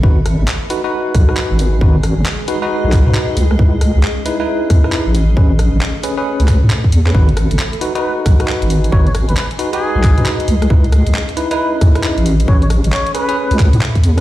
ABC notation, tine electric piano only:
X:1
M:4/4
L:1/16
Q:"Swing 16ths" 1/4=135
K:G#phr
V:1 name="Tine electric piano"
[DFB] z4 z [DFB] [DFB]4 [DFB]4- [DFB] | [DFB] z4 z [DFB] [DFB]4 [DFB]3 z2 | [DEB] z4 z [DEB] [DEB]4 [DEB]3 z2 | [CGB] z4 z [CGB] [CGB]4 z4 [CGB] |
[DFB] z4 z [DFB] [DFB]4 [DFB]4- [DFB] | [DFB] z4 z [DFB] [DFB]4 [DFB]3 z2 | [DEB] z4 z [DEB] [DEB]4 [DEB]3 z2 | [CGB] z4 z [CGB] [CGB]4 z4 [CGB] |]